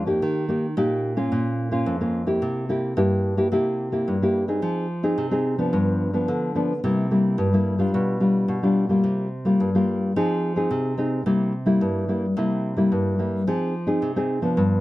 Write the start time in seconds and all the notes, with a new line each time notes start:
Already playing: F2
0.06 A#3 D#4 G4
0.22 D#3
0.48 A#3 D#4 G4
0.77 A#2 A#3 D#4 G4
1.16 A#3 C#4 F4
1.32 A#2
1.71 A#3 C#4 F4
1.86 F2
2.01 A#3 C#4 F4
2.27 A#3 E4 G4
2.42 C3
2.69 A#3 E4 G4
2.97 G2 A#3 E4 G4
3.37 A#3 E4 G4
3.52 C3 A#3 E4 G4
3.92 A#3 E4 G4
4.08 G2
4.22 A#3 E4 G4
4.48 C4 D#4 G#4
4.62 F3
5.03 C4 D#4 G#4
5.18 C3
5.31 C4 D#4 G#4
5.58 F3 B3 D4
5.73 G2
6.13 F3 B3 D4
6.28 D3
6.55 F3 B3 D4
6.84 C3 G3 A#3 E4
7.11 G3 A#3 E4
7.38 G2
7.53 G3 A#3 E4
7.79 G3 D4 F4
7.94 B2
8.20 G3 D4 F4
8.48 B2
8.63 G3 D4 F4
8.89 G3 A#3 F4
9.04 C3
9.45 G3 A#3 F4
9.60 G2
9.75 G3 A#3 F4
10.16 F3 C4 D#4 G#4
10.56 C4 D#4 G#4
10.71 C3
10.97 C4 D#4 G#4
11.26 C3 G3 A#3 E4
11.66 G3 A#3 E4
11.81 G2
12.08 G3 A#3 E4
12.37 C3 G3 A#3 E4
12.77 G3 A#3 E4
12.92 G2
13.19 G3 A#3 E4
13.47 F3 C4 D#4 G#4
13.87 C4 D#4 G#4
14.02 C3
14.16 C4 D#4 G#4
14.42 F3 B3 D4
14.57 G2